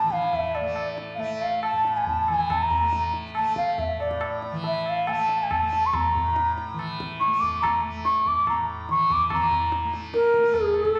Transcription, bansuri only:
Already playing: A5
0.12 F5
0.35 E5
0.56 D5
1.15 F5
1.19 E5
1.42 F5
1.64 A5
1.97 G#5
2.07 A5
2.32 G#5
2.52 A#5
3.36 A5
3.57 F5
3.79 E5
4.00 D5
4.67 E5
4.89 F5
5.11 A5
5.43 G#5
5.53 A5
5.86 C#6
5.95 A#5
7.20 C#6
7.40 D6
7.62 A#5
8.05 C#6
8.28 D6
8.49 A#5
8.91 C#6
9.13 D6
9.34 A#5
10.14 A#4
10.55 G#4
10.76 A4

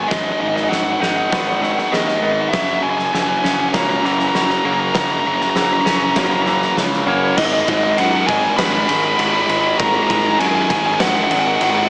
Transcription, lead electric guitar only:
0.03 G#5
0.08 D#5
0.17 D#5
0.24 D#5
0.32 D#5
0.40 D#5
0.48 D#5
0.56 D#5
0.64 D#5
0.68 F#5
0.76 F#5
0.84 F#5
0.93 F#5
1.00 F#5
1.08 F#5
1.16 F#5
1.23 F#5
1.30 F#5
1.40 F#5
1.48 F#5
1.55 F#5
1.63 F#5
1.70 F#5
1.79 F#5
1.88 D#5 F#5
2.00 D#5
2.08 D#5
2.16 D#5
2.24 D#5
2.32 D#5
2.41 D#5
2.49 E5
2.83 G#5
2.89 G#5
2.98 G#5
3.06 G#5
3.14 G#5
3.22 G#5
3.29 G#5
3.38 G#5
3.45 G#5
3.54 G#5
3.60 G#5
3.69 G#5
3.74 A#5
3.81 A#5
3.90 A#5
3.97 A#5
4.06 A#5
4.12 A#5
4.19 A#5
4.28 A#5
4.36 A#5
4.42 A#5
4.51 A#5
4.58 A#5
4.65 A#5
4.73 A#5
4.80 A#5
4.89 A#5
4.97 A#5
5.04 A#5
5.12 A#5
5.20 A#5
5.27 A#5
5.35 A#5
5.42 A#5
5.50 A#5
5.57 A#5
5.65 A#5
5.73 A#5
5.81 A#5
5.88 A#5
5.96 A#5
6.03 A#5
6.11 A#5
6.19 A#5
6.26 A#5
6.33 A#5
6.42 A#5
6.49 A#5
6.58 A#5
6.65 A#5
7.07 C#5
7.37 D#5
7.46 D#5
7.53 D#5
7.61 D#5
7.69 D#5
7.77 D#5
7.83 D#5
7.92 D#5
7.97 F#5
8.27 G#5
8.57 B5
8.64 B5
8.73 B5
8.80 B5
8.88 B5
8.96 B5
9.04 B5
9.12 B5
9.20 B5
9.28 B5
9.36 B5
9.42 B5
9.50 B5
9.60 B5
9.67 B5
9.78 A#5
9.88 A#5
9.95 A#5
10.03 A#5
10.11 A#5
10.18 A#5
10.27 A#5
10.39 G#5
10.47 G#5
10.55 G#5
10.62 G#5
10.70 G#5
10.78 G#5
10.86 G#5
10.94 G#5
11.00 F#5
11.08 F#5
11.16 F#5
11.24 F#5
11.31 F#5
11.39 F#5
11.47 F#5
11.55 F#5
11.63 F#5
11.70 F#5
11.78 F#5

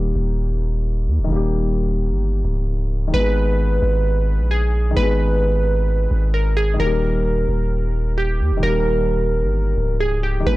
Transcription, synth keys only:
3.14 B4
4.51 G#4
4.97 B4
6.34 A#4
6.57 G#4
6.80 A#4
8.18 G4
8.63 A#4
10.00 G#4
10.23 G4
10.46 B4

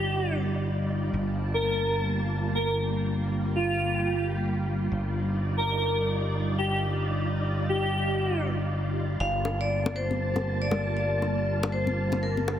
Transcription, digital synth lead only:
Already playing: G4
1.54 A#4
2.55 A#4
2.65 A#4
3.56 F4
5.57 A#4
6.58 G4
6.68 G4
7.69 G4

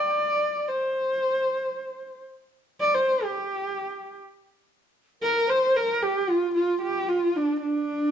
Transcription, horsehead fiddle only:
Already playing: D5
0.68 C5
2.80 D5
2.94 C5
3.23 G4
5.23 A#4
5.49 C5
5.76 A#4
6.02 G4
6.29 F4
6.54 F4
6.82 G4
7.09 F4
7.36 D4
7.61 D4

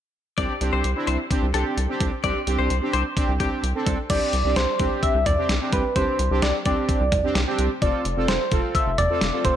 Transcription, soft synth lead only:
4.10 D5
4.56 C5
5.03 E5
5.26 D5
5.73 B4
5.96 C5
6.43 D5
6.66 D5
7.82 D5
8.28 C5
8.75 E5
8.98 D5
9.45 C5

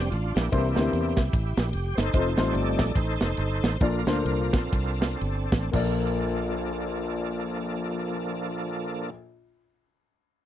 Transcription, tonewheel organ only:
Already playing: D4 G4
0.10 F4
0.34 A#3 E4 G4
0.51 E3 A#3 D4
1.71 G4
1.95 D#4 A4 C5
2.37 G3 A3 D#4
2.53 A4 D5
2.95 D#4 A4 C5
3.80 D4 F4 A#4
4.54 C4 D4 A4
5.74 F3 A#3 D4 A4

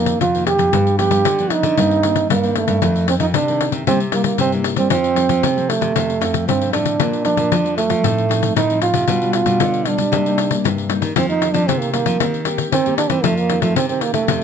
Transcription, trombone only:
Already playing: A#3
0.21 F4
0.47 G4
0.99 G4
1.52 D#4
2.31 A#3
2.57 A3
3.09 C4
3.21 D#4
3.35 D4
3.88 C4
4.14 A#3
4.25 A#3
4.41 C4
4.78 C4
4.92 C4
5.69 A3
6.48 C4
6.73 D4
7.25 D4
7.77 A3
8.57 D#4
8.82 F4
9.35 F4
9.87 D4
11.16 C4
11.29 D#4
11.53 D4
11.67 C4
11.80 A#3
11.92 A#3
12.73 C4
12.98 D4
13.10 C4
13.24 A3
13.38 A#3
13.62 A3
13.76 C4
13.89 C4
14.02 A#3
14.14 A3

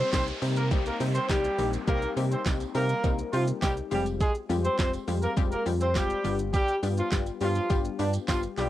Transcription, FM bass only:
0.13 C2
0.42 C3
0.71 C2
1.00 C3
1.29 C2
1.58 A#1
1.88 C2
2.17 C3
2.46 C2
2.75 C3
3.04 C2
3.33 C3
3.62 C2
3.92 F1
4.50 F2
4.79 F1
5.08 F2
5.37 F1
5.66 F2
5.95 F1
6.25 G1
6.83 G2
7.12 G1
7.41 G2
7.70 G1
7.99 G2
8.28 G1
8.57 B1

